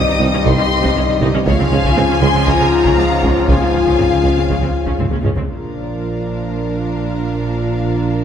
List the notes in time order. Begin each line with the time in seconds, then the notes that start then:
Already playing: C2 G2 D#3 G3 C4 D#4 G4 C5 D#5 D#6
0.07 C3 D#4
0.20 C2 C3 D#4
0.34 C3 C#4
0.45 C2 C3 D#4 C6, taiko
0.58 C3 C#4
0.82 C3 D#4, taiko
0.95 C2 C3 C#4
1.08 C3 D#4
1.20 C2 C3 D#4, taiko
1.34 C3 C#4
1.46 C#2 G#2 C#3 F3 C#4 F4 G#4 C#5 F5, taiko
1.59 C#3 C4
1.71 C#2 C#3 C#4 G#5, taiko low-mid
1.84 C#3 C#4, taiko
1.96 C#2 C#3 C4, taiko low-mid
2.09 C#3 C#4
2.21 C#2 C#3 C#4 C6
2.34 C#3 C4
2.47 C#2 C#3 C#4 A#5, taiko
2.60 C#3 C4
2.85 C#3 C#4, taiko
2.97 C#2 C#3 C4 F5
3.11 C#3 C#4
3.22 C#2 C#3 C#4 C#5, taiko
3.36 C#3 C4
3.48 C#2 C#3 C#4 F5 G#5, taiko
3.61 C#3 C4
3.73 C#2 C#3 C#4, taiko low-mid
3.86 C#3 C#4, taiko
3.98 C#2 C#3 C4, taiko low-mid
4.12 C#3 C#4
4.23 C#2 C#3 C#4
4.36 C#3 C4
4.49 C#2 C#3 C#4, taiko
4.62 C#3 C4
4.86 C#3 C#4, taiko
4.99 C#2 C#3 C4, taiko low-mid
5.12 C#3 C#4, taiko high
5.24 C#2 C#3 C#4, taiko low-mid
5.37 C#3 C4, taiko low
5.49 A#1 A#2 F3 D4 F4 A#4 D5 F5, taiko